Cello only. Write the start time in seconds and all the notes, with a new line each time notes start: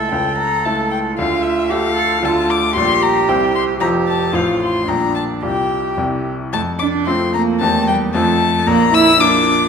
Already playing: A4
1.18 F4
1.70 G4
1.96 A4
2.22 F4
2.75 G4
3.80 G4
4.33 F4
4.87 D4
5.42 G4
6.53 A3
6.80 D4
7.08 C4
7.35 A#3
7.62 A3
7.89 G3
8.14 A3
8.68 A#3
8.94 E4
9.21 D4